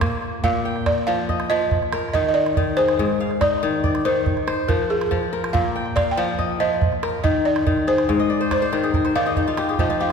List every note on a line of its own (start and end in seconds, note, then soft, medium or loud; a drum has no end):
0.00 0.43 A#2 medium
0.00 1.94 A#3 medium
0.00 0.15 D#4 medium
0.00 0.37 G4 medium
0.00 0.65 A#4 medium
0.00 0.18 D5 medium
0.00 calabash thump medium
0.00 calabash click medium
0.12 calabash click soft
0.22 calabash click soft
0.44 1.76 A#2 medium
0.44 0.88 F5 loud
0.44 calabash thump medium
0.54 calabash click soft
0.65 1.58 G5 medium
0.76 calabash click soft
0.86 1.08 D5 medium
0.86 calabash thump medium
0.86 calabash click medium
1.07 1.49 F3 medium
1.07 1.51 F5 medium
1.29 2.36 D#5 medium
1.29 calabash thump medium
1.29 calabash click soft
1.40 calabash click soft
1.50 1.76 F3 medium
1.50 2.12 D#5 loud
1.71 calabash thump medium
1.71 calabash click soft
1.82 calabash click soft
1.93 3.20 A#4 medium
1.93 calabash click medium
2.13 2.56 D#3 medium
2.13 2.27 D#5 medium
2.13 calabash thump medium
2.28 2.35 D#5 medium
2.34 2.78 D5 medium
2.46 calabash click soft
2.57 3.04 D#3 medium
2.57 calabash thump medium
2.77 4.15 G#4 medium
2.77 3.43 C5 medium
2.77 calabash click soft
2.89 calabash click soft
2.99 4.31 G#2 medium
2.99 calabash thump medium
3.10 calabash click soft
3.20 4.20 F5 medium
3.31 calabash click soft
3.41 5.04 D#4 medium
3.41 4.01 D5 medium
3.41 calabash thump soft
3.41 calabash click medium
3.63 4.04 D#3 medium
3.84 4.95 D5 medium
3.84 calabash thump medium
3.84 calabash click soft
3.95 calabash click soft
4.05 4.31 D#3 medium
4.05 4.71 C5 medium
4.26 calabash thump medium
4.26 calabash click soft
4.37 calabash click soft
4.47 5.66 C5 medium
4.47 calabash click medium
4.68 5.10 F3 medium
4.68 4.78 A#4 medium
4.68 calabash thump medium
4.90 5.35 G#4 medium
5.01 calabash click medium
5.11 5.59 F3 medium
5.11 calabash thump medium
5.23 calabash click soft
5.33 6.60 A#4 medium
5.33 calabash click soft
5.44 calabash click soft
5.53 6.86 A#2 medium
5.53 5.93 F5 medium
5.53 calabash thump medium
5.65 calabash click soft
5.76 6.69 G5 medium
5.86 calabash click soft
5.96 6.09 D5 medium
5.96 6.96 F5 medium
5.96 calabash thump medium
5.96 calabash click medium
6.11 6.18 G5 medium
6.17 6.59 F3 medium
6.17 6.61 F5 medium
6.39 7.46 D#5 medium
6.39 calabash thump medium
6.39 calabash click soft
6.60 6.86 F3 medium
6.60 7.22 D#5 medium
6.82 calabash thump medium
6.82 calabash click soft
6.92 calabash click soft
7.03 8.30 A#4 medium
7.03 calabash click medium
7.24 7.65 D#3 medium
7.24 7.46 D#5 medium
7.24 calabash thump medium
7.45 7.89 D5 medium
7.56 calabash click medium
7.67 8.14 D#3 medium
7.67 calabash thump medium
7.77 calabash click soft
7.87 8.83 G#4 medium
7.87 8.51 C5 medium
7.87 calabash click soft
7.98 calabash click medium
8.09 9.41 G#2 medium
8.09 9.09 F5 medium
8.09 calabash thump medium
8.20 8.57 D#5 medium
8.30 8.51 D5 medium
8.30 calabash click soft
8.41 8.62 C5 medium
8.51 9.17 C5 medium
8.51 8.79 D5 medium
8.51 calabash thump medium
8.51 calabash click medium
8.62 9.05 C5 medium
8.73 9.14 D#3 medium
8.73 8.94 A#4 medium
8.73 calabash click soft
8.84 9.64 G#4 medium
8.94 10.12 A#4 medium
8.94 calabash thump medium
9.05 10.12 C5 medium
9.05 calabash click soft
9.15 9.41 D#3 medium
9.15 9.43 D5 medium
9.15 9.81 F5 medium
9.26 10.12 D#5 medium
9.26 calabash click soft
9.37 9.79 D#4 medium
9.37 calabash thump medium
9.37 calabash click soft
9.47 9.89 F4 medium
9.47 calabash click soft
9.57 10.00 G4 medium
9.57 calabash click medium
9.68 10.06 G#4 medium
9.68 calabash click soft
9.79 10.12 F3 medium
9.79 10.12 D#4 medium
9.79 10.01 D#5 medium
9.79 calabash thump medium
9.90 10.12 F4 medium
10.00 10.12 G4 medium
10.00 10.12 F5 medium
10.00 calabash click soft